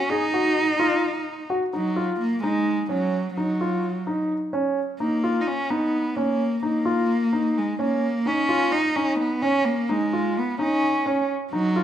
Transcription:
Already playing: C#4
0.10 D#4 G#4
0.34 F#4
0.79 F4
1.50 F#4
1.73 F#3 D#4
1.96 F4
2.21 A#3
2.43 G#3 D#4
2.89 F#3 C#4
3.36 F#3 D#4
3.61 F4
4.07 D#4
4.53 C#4
4.99 A#3 D#4
5.24 F4
5.41 D#4
5.47 C#4
5.70 B3 D#4
6.16 A#3 C#4
6.63 A#3 D#4
6.85 F4
7.33 D#4
7.58 G#3
7.79 A#3 C#4
8.26 C#4 D#4
8.49 F4
8.72 D#4
8.96 C#4 D#4
9.21 B3
9.42 C#4
9.65 A#3
9.89 G#3 D#4
10.13 F4
10.39 B3
10.59 C#4 D#4
11.06 C#4
11.51 F#3 D#4
11.76 F4

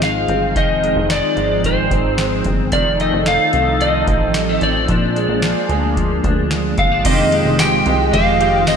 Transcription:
Already playing: G#1 D#3 F3 C4 D#4 G#4
0.02 G#3 F5, snare, closed hi-hat
0.28 G1 C4, closed hi-hat
0.56 F1 D#3 C4 D#4 D#5, kick, closed hi-hat
0.83 G#3, closed hi-hat
0.96 F1
1.10 D#3 D5, snare, closed hi-hat
1.37 G#1 G#3, closed hi-hat
1.64 D#3 C5, kick, closed hi-hat
1.91 G#1 C4, kick, closed hi-hat
2.18 G#3, snare, closed hi-hat
2.44 G1 C4, kick, closed hi-hat
2.71 F1 D#3 F3 C4 D#4 A4 D5, kick, closed hi-hat
3.00 A3 D#5, closed hi-hat
3.13 F1
3.26 D#3 F5, snare, closed hi-hat
3.53 C2 A3, closed hi-hat
3.81 D#3 D#5, closed hi-hat
4.07 A1 C4, kick, closed hi-hat
4.34 G3, snare, closed hi-hat
4.49 A3
4.61 A1 C4 D5, closed hi-hat
4.88 A#1 F3 A#3 D4 G#4, kick, closed hi-hat
5.16 G#3, closed hi-hat
5.29 A#1
5.42 F3, snare, closed hi-hat
5.69 D2 G#3, closed hi-hat
5.97 F3, kick, closed hi-hat
6.24 D2 D4, kick, closed hi-hat
6.51 G#3, snare, closed hi-hat
6.78 G1 C4 F5, kick, closed hi-hat
6.92 D4
7.03 F1 F2 C3 D#3 G#3 F4 D#5 G5, kick, crash, ride
7.07 G#3 C4 G4
7.32 G#3, ride
7.45 F1
7.59 G4 G5, snare, ride, tambourine
7.86 C2 G#3, ride
8.11 F1 D#3 G#3 C4 F5, kick, ride
8.15 G4
8.41 G4, ride
8.67 C4 D#5, snare, ride, tambourine

